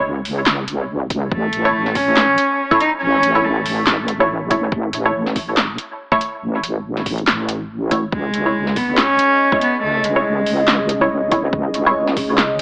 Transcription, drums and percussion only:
0.25 open hi-hat
0.46 snare, clap
0.68 closed hi-hat
1.10 kick, closed hi-hat
1.32 kick
1.53 closed hi-hat
1.86 snare
1.95 kick, open hi-hat
2.17 snare, clap
2.38 closed hi-hat
2.71 kick
2.81 closed hi-hat
3.23 closed hi-hat
3.66 open hi-hat
3.87 snare, clap
4.08 closed hi-hat
4.51 kick, closed hi-hat
4.72 kick
4.93 closed hi-hat
5.26 snare
5.36 kick, open hi-hat
5.57 snare, clap
5.78 closed hi-hat
6.12 kick
6.21 closed hi-hat
6.63 closed hi-hat
6.97 snare
7.06 kick, open hi-hat
7.18 closed hi-hat
7.27 snare, clap
7.49 closed hi-hat
7.91 kick, closed hi-hat
8.12 kick
8.34 closed hi-hat
8.67 snare
8.76 kick, open hi-hat
8.98 snare, clap
9.19 closed hi-hat
9.52 kick
9.61 closed hi-hat
10.04 closed hi-hat
10.46 open hi-hat
10.68 snare, clap
10.89 closed hi-hat
11.32 kick, closed hi-hat
11.53 kick
11.74 closed hi-hat
12.07 snare
12.17 kick, open hi-hat
12.38 snare, clap

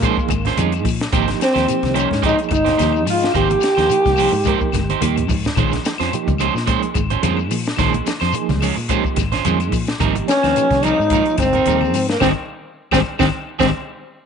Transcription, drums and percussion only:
0.02 kick, closed hi-hat, shekere
0.17 kick, shekere
0.29 kick, closed hi-hat, high conga, claves, shekere
0.45 snare, closed hi-hat, low conga, shekere
0.57 closed hi-hat, high conga, shekere
0.72 closed hi-hat, claves, shekere
0.85 kick, open hi-hat, shekere
1.00 snare, closed hi-hat, shekere
1.12 kick, closed hi-hat, high conga, low conga, claves, shekere
1.28 snare, closed hi-hat, high conga, shekere
1.41 snare, closed hi-hat, shekere
1.55 snare, closed hi-hat, claves, shekere
1.68 closed hi-hat, high conga, shekere
1.83 kick, snare, closed hi-hat, high conga, shekere
1.94 closed hi-hat, claves
1.99 shekere
2.11 snare, low conga
2.15 shekere
2.23 kick, closed hi-hat
2.28 shekere
2.39 closed hi-hat
2.43 shekere
2.49 kick, closed hi-hat, high conga, claves
2.55 shekere
2.66 snare, closed hi-hat, low conga, shekere
2.79 snare, closed hi-hat, high conga, shekere
2.93 claves, shekere
3.07 open hi-hat, shekere
3.22 snare, closed hi-hat, shekere
3.32 kick, closed hi-hat, high conga, low conga, claves, shekere
3.49 closed hi-hat, high conga, shekere
3.61 snare, closed hi-hat, shekere
3.75 closed hi-hat, claves, shekere
3.79 snare
3.90 closed hi-hat, high conga, shekere
4.05 kick, snare, closed hi-hat, high conga, shekere
4.16 open hi-hat, claves, shekere
4.33 shekere
4.44 kick, closed hi-hat, high conga, shekere
4.61 kick, shekere
4.72 kick, snare, closed hi-hat, high conga, claves, shekere
4.90 closed hi-hat, high conga, shekere
5.01 closed hi-hat, low conga, shekere
5.16 closed hi-hat, low conga, claves, shekere
5.29 kick, open hi-hat, low conga, shekere
5.44 snare, closed hi-hat, low conga, shekere
5.56 kick, closed hi-hat, high conga, low conga, claves, shekere
5.71 snare, closed hi-hat, high conga, shekere
5.85 snare, closed hi-hat, shekere
5.98 snare, closed hi-hat, claves, shekere
6.13 closed hi-hat, high conga, shekere
6.28 kick, closed hi-hat, high conga, shekere
6.38 closed hi-hat, claves, shekere
6.56 snare, shekere
6.67 kick, closed hi-hat, high conga, shekere
6.83 closed hi-hat, shekere
6.94 kick, closed hi-hat, high conga, claves, shekere
7.10 closed hi-hat, low conga, shekere
7.23 closed hi-hat, high conga, shekere
7.37 claves, shekere
7.51 open hi-hat, shekere
7.65 snare, closed hi-hat, shekere
7.76 kick, snare, closed hi-hat, high conga, low conga, claves, shekere
7.93 closed hi-hat, high conga, shekere
8.07 snare, closed hi-hat, shekere
8.20 snare, closed hi-hat, claves, shekere
8.32 closed hi-hat, high conga, shekere
8.49 kick, snare, closed hi-hat, high conga, shekere
8.61 open hi-hat, high conga, claves, shekere
8.77 shekere
8.89 kick, closed hi-hat, shekere
9.04 kick, shekere
9.16 kick, snare, closed hi-hat, high conga, claves, shekere
9.32 snare, closed hi-hat, low conga, shekere
9.45 closed hi-hat, high conga, shekere
9.60 closed hi-hat, claves, shekere
9.72 kick, open hi-hat, shekere
9.87 snare, closed hi-hat, shekere
10.00 kick, closed hi-hat, high conga, low conga, claves, shekere
10.15 closed hi-hat, high conga, shekere
10.28 snare, closed hi-hat, shekere
10.43 snare, closed hi-hat, claves, shekere
10.56 closed hi-hat, high conga, shekere
10.71 kick, snare, closed hi-hat, high conga, shekere
10.83 closed hi-hat, claves, shekere
11.01 shekere
11.10 kick, closed hi-hat, high conga, shekere
11.26 closed hi-hat
11.30 shekere
11.38 kick, snare, closed hi-hat, high conga, claves, shekere
11.53 closed hi-hat, low conga, shekere
11.66 closed hi-hat, high conga, shekere
11.81 high conga, claves, shekere
11.94 open hi-hat, shekere
12.08 snare, closed hi-hat, shekere
12.20 kick, snare, high conga, claves, shekere
12.91 kick, snare, high conga, claves, shekere
13.19 kick, snare, high conga, claves, shekere
13.60 kick, snare, high conga, claves, shekere

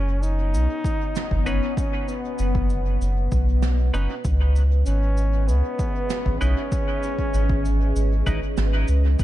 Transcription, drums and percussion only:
0.23 cabasa
0.54 cabasa
0.84 kick, cabasa
1.15 snare, cabasa
1.31 kick
1.46 cabasa
1.77 kick, cabasa
2.08 cabasa
2.38 cabasa
2.55 kick
2.70 cabasa
3.01 cabasa
3.32 kick, cabasa
3.62 snare, cabasa
3.94 cabasa
4.25 kick, cabasa
4.56 cabasa
4.86 cabasa
5.17 cabasa
5.49 cabasa
5.79 kick, cabasa
6.10 snare, cabasa
6.26 kick
6.41 cabasa
6.72 kick, cabasa
7.03 cabasa
7.19 kick
7.34 cabasa
7.50 kick
7.65 cabasa
7.96 cabasa
8.27 kick, cabasa
8.57 snare, cabasa
8.88 cabasa
9.19 kick, cabasa

